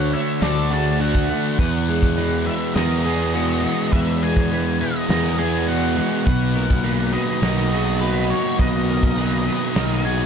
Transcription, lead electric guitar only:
0, 0, Header, 1, 2, 480
1, 0, Start_track
1, 0, Tempo, 584226
1, 1306, Time_signature, 4, 2, 24, 8
1, 8429, End_track
2, 0, Start_track
2, 0, Title_t, "Lead electric guitar"
2, 0, Program_c, 0, 29
2, 0, Note_on_c, 0, 78, 85
2, 111, Note_on_c, 0, 76, 84
2, 113, Note_off_c, 0, 78, 0
2, 348, Note_off_c, 0, 76, 0
2, 351, Note_on_c, 0, 74, 85
2, 595, Note_off_c, 0, 74, 0
2, 596, Note_on_c, 0, 81, 86
2, 830, Note_off_c, 0, 81, 0
2, 834, Note_on_c, 0, 78, 86
2, 1299, Note_off_c, 0, 78, 0
2, 1308, Note_on_c, 0, 78, 103
2, 2027, Note_on_c, 0, 76, 83
2, 2051, Note_off_c, 0, 78, 0
2, 2259, Note_off_c, 0, 76, 0
2, 2263, Note_on_c, 0, 75, 92
2, 3225, Note_off_c, 0, 75, 0
2, 3228, Note_on_c, 0, 76, 98
2, 3474, Note_on_c, 0, 80, 84
2, 3476, Note_off_c, 0, 76, 0
2, 3951, Note_on_c, 0, 75, 87
2, 3966, Note_off_c, 0, 80, 0
2, 4426, Note_on_c, 0, 80, 82
2, 4445, Note_off_c, 0, 75, 0
2, 4667, Note_off_c, 0, 80, 0
2, 4671, Note_on_c, 0, 78, 88
2, 5132, Note_off_c, 0, 78, 0
2, 5142, Note_on_c, 0, 78, 93
2, 5859, Note_on_c, 0, 75, 87
2, 5886, Note_off_c, 0, 78, 0
2, 6578, Note_on_c, 0, 71, 77
2, 6604, Note_off_c, 0, 75, 0
2, 6805, Note_off_c, 0, 71, 0
2, 6819, Note_on_c, 0, 73, 73
2, 7058, Note_off_c, 0, 73, 0
2, 7062, Note_on_c, 0, 75, 86
2, 8256, Note_on_c, 0, 80, 75
2, 8429, Note_off_c, 0, 75, 0
2, 8429, Note_off_c, 0, 80, 0
2, 8429, End_track
0, 0, End_of_file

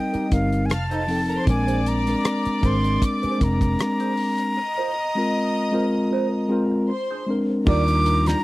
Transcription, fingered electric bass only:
0, 0, Header, 1, 3, 480
1, 0, Start_track
1, 0, Tempo, 773196
1, 918, Time_signature, 4, 2, 24, 8
1, 5238, End_track
2, 0, Start_track
2, 0, Title_t, "Fingered electric bass"
2, 0, Program_c, 0, 33
2, 200, Note_on_c, 0, 31, 77
2, 437, Note_off_c, 0, 31, 0
2, 437, Note_on_c, 0, 29, 89
2, 850, Note_off_c, 0, 29, 0
2, 914, Note_on_c, 0, 34, 93
2, 1328, Note_off_c, 0, 34, 0
2, 1636, Note_on_c, 0, 32, 81
2, 1843, Note_off_c, 0, 32, 0
2, 2120, Note_on_c, 0, 29, 78
2, 2326, Note_off_c, 0, 29, 0
2, 4763, Note_on_c, 0, 39, 103
2, 5174, Note_off_c, 0, 39, 0
2, 5238, End_track
3, 0, Start_track
3, 0, Title_t, "Muted fingered electric bass strokes"
3, 91, Note_on_c, 9, 29, 44
3, 154, Note_off_c, 9, 29, 0
3, 1530, Note_on_c, 9, 29, 46
3, 1592, Note_off_c, 9, 29, 0
3, 2011, Note_on_c, 9, 29, 44
3, 2073, Note_off_c, 9, 29, 0
3, 5238, End_track
0, 0, End_of_file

